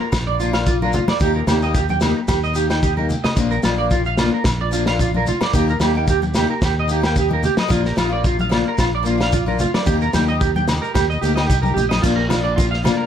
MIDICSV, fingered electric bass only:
0, 0, Header, 1, 2, 480
1, 0, Start_track
1, 0, Key_signature, -2, "major"
1, 0, Tempo, 541028
1, 1072, Time_signature, 4, 2, 24, 8
1, 11590, End_track
2, 0, Start_track
2, 0, Title_t, "Fingered electric bass"
2, 0, Program_c, 0, 33
2, 110, Note_on_c, 0, 34, 92
2, 878, Note_off_c, 0, 34, 0
2, 1071, Note_on_c, 0, 39, 95
2, 1263, Note_off_c, 0, 39, 0
2, 1304, Note_on_c, 0, 39, 69
2, 1882, Note_off_c, 0, 39, 0
2, 2024, Note_on_c, 0, 39, 84
2, 2793, Note_off_c, 0, 39, 0
2, 2986, Note_on_c, 0, 34, 95
2, 3179, Note_off_c, 0, 34, 0
2, 3228, Note_on_c, 0, 34, 74
2, 3804, Note_off_c, 0, 34, 0
2, 3946, Note_on_c, 0, 34, 94
2, 4715, Note_off_c, 0, 34, 0
2, 4911, Note_on_c, 0, 39, 95
2, 5102, Note_off_c, 0, 39, 0
2, 5143, Note_on_c, 0, 39, 68
2, 5721, Note_off_c, 0, 39, 0
2, 5870, Note_on_c, 0, 39, 93
2, 6638, Note_off_c, 0, 39, 0
2, 6834, Note_on_c, 0, 34, 101
2, 7024, Note_off_c, 0, 34, 0
2, 7075, Note_on_c, 0, 34, 67
2, 7649, Note_off_c, 0, 34, 0
2, 7791, Note_on_c, 0, 34, 86
2, 8560, Note_off_c, 0, 34, 0
2, 8756, Note_on_c, 0, 39, 95
2, 8947, Note_off_c, 0, 39, 0
2, 8996, Note_on_c, 0, 39, 75
2, 9570, Note_off_c, 0, 39, 0
2, 9719, Note_on_c, 0, 39, 89
2, 9908, Note_off_c, 0, 39, 0
2, 9958, Note_on_c, 0, 38, 78
2, 10171, Note_off_c, 0, 38, 0
2, 10196, Note_on_c, 0, 36, 79
2, 10410, Note_off_c, 0, 36, 0
2, 10433, Note_on_c, 0, 34, 68
2, 10648, Note_off_c, 0, 34, 0
2, 10677, Note_on_c, 0, 34, 93
2, 11441, Note_off_c, 0, 34, 0
2, 11590, End_track
0, 0, End_of_file